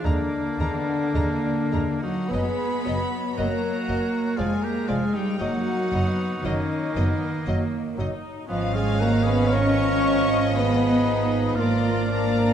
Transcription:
Already playing: timpani D#3
0.02 double bass section D#2, french horn section D3, cello section D3, bassoon G#3, viola section A#3, clarinet D4, violin section D5 A#5, flute A#5
0.06 oboe A#3
0.58 double bass section D#2, bassoon G#3, viola section B3, flute A#5, violin section A#5
1.14 double bass section D#2, bassoon G#3, viola section A#3, violin section A#5, flute A#5
1.72 double bass section D#2, bassoon G#3, violin section A#5, flute A#5
2.03 cello section F#3, french horn section F#3, oboe D#4, clarinet F#4, violin section F#5
2.29 double bass section F#1, bassoon F#3, french horn section B3, cello section B3, oboe G#4, clarinet B4, violin section D#5 B5
2.33 viola section G#3, flute D#5
2.85 double bass section F#1, bassoon F#3, viola section F#3, violin section D#5, flute D#5
3.37 double bass section F#1, bassoon F#3, french horn section A#3, cello section A#3, oboe F#4, clarinet A#4, flute D#5, violin section D#5 A#5
3.88 double bass section F#1, bassoon F#3, violin section D#5, flute D#5
4.37 double bass section F1, bassoon F3, french horn section G#3, cello section G#3, viola section G#3, oboe F4, clarinet G#4, flute D5, violin section D5 G#5
4.63 french horn section A#3, cello section A#3, oboe G4, clarinet A#4, violin section A#5
4.87 double bass section F1, bassoon F3, french horn section G#3, cello section G#3, oboe F4, clarinet G#4, violin section D5 G#5, flute D5
5.14 french horn section G3, cello section G3, oboe D#4, clarinet G4, violin section G5
5.38 double bass section F#1, french horn section F#3, cello section F#3, bassoon F#3, viola section A#3, oboe D#4, clarinet F#4, violin section D#5 F#5, flute D#5
5.93 double bass section F#1, bassoon F#3, viola section B3, violin section D#5, flute D#5
6.44 double bass section F#1, cello section D#3, french horn section D#3, bassoon F#3, oboe A#3, viola section C#4, clarinet D#4, flute D#5, violin section D#5
6.95 double bass section F#1, bassoon F#3, viola section B3, flute D#5, violin section D#5
7.47 double bass section F#1, bassoon F#3, viola section A#3, flute D#5, violin section D#5
7.98 double bass section F#1, bassoon F#3, viola section D#4, flute D#5, violin section D#5
8.49 double bass section G#1, bassoon F3, french horn section F3, cello section F3, oboe B3, viola section C#4, clarinet F4, flute D#5, violin section F5
8.74 cello section G#3, french horn section G#3, oboe F4, clarinet G#4, violin section G#5
8.99 french horn section A#3, cello section A#3, oboe F#4, clarinet A#4, violin section A#5
9.23 oboe G#4, violin section B5
9.27 cello section B3, french horn section B3, clarinet B4
9.47 oboe A#4
9.52 french horn section C#4, cello section C#4, clarinet C#5, violin section D#5 C#6
10.53 viola section B3, oboe G#4
10.57 cello section B3, french horn section B3, clarinet B4, violin section B5
11.07 viola section D#4
11.56 double bass section G#1, bassoon F3, french horn section A#3, oboe F4, violin section D5 A#5, flute D5
11.60 cello section A#3, viola section F4, clarinet A#4
12.11 viola section D4, violin section D5

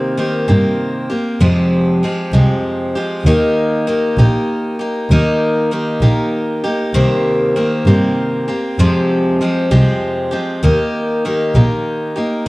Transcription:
Already playing: steel-string acoustic guitar C3 D#3 A#3 C4 G4
0.17 steel-string acoustic guitar D#3 A#3 C4 G4
0.48 double bass G2, steel-string acoustic guitar C3 D#3 A#3 C4 G4
1.10 steel-string acoustic guitar A#3 C4 G4
1.40 double bass F2, steel-string acoustic guitar F2 C3 F3 G#3 C4 G4
2.03 steel-string acoustic guitar F3 G#3 C4 G4
2.32 double bass C2, steel-string acoustic guitar F2 C3 F3 G#3 C4 G4
2.95 steel-string acoustic guitar F3 G#3 C4 G4
3.25 double bass D#2, steel-string acoustic guitar D#3 A#3 D#4 G4
3.87 steel-string acoustic guitar D#3 A#3 D#4 G4
4.18 double bass A#1, steel-string acoustic guitar D#3 A#3 D#4 G4
4.79 steel-string acoustic guitar A#3 D#4 G4
5.10 double bass D#2, steel-string acoustic guitar D#3 A#3 D#4 G4
5.71 steel-string acoustic guitar D#3 A#3 D#4 G4
6.01 double bass A#1, steel-string acoustic guitar D#3 A#3 D#4 G4
6.64 steel-string acoustic guitar A#3 D#4 G4
6.93 double bass C2, steel-string acoustic guitar C3 D#3 A#3 C4 G4
7.56 steel-string acoustic guitar D#3 A#3 C4 G4
7.86 double bass G2, steel-string acoustic guitar C3 D#3 A#3 C4 G4
8.48 steel-string acoustic guitar A#3 C4 G4
8.78 double bass F2, steel-string acoustic guitar F2 C3 F3 G#3 C4 G4
9.41 steel-string acoustic guitar F3 G#3 C4 G4
9.71 double bass C2, steel-string acoustic guitar F2 C3 F3 G#3 C4 G4
10.31 steel-string acoustic guitar F3 G#3 C4 G4
10.63 double bass D#2, steel-string acoustic guitar D#3 A#3 D#4 G4
11.25 steel-string acoustic guitar D#3 A#3 D#4 G4
11.55 double bass A#1, steel-string acoustic guitar D#3 A#3 D#4 G4
12.16 steel-string acoustic guitar A#3 D#4 G4

